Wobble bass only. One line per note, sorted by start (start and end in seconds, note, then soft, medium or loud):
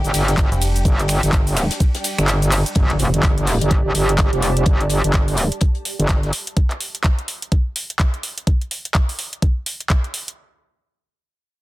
0.04 0.12 G1 loud
0.14 0.49 G1 medium
0.85 1.21 G1 loud
1.23 1.68 G1 loud
2.18 2.64 G1 loud
2.76 2.98 G1 loud
2.99 3.11 F1 medium
3.14 3.59 G1 loud
3.61 3.83 G1 loud
3.85 3.93 G1 medium
3.95 4.30 G1 medium
4.33 4.65 F1 loud
4.66 5.02 G1 loud
5.04 5.49 G1 medium
5.99 6.31 G1 loud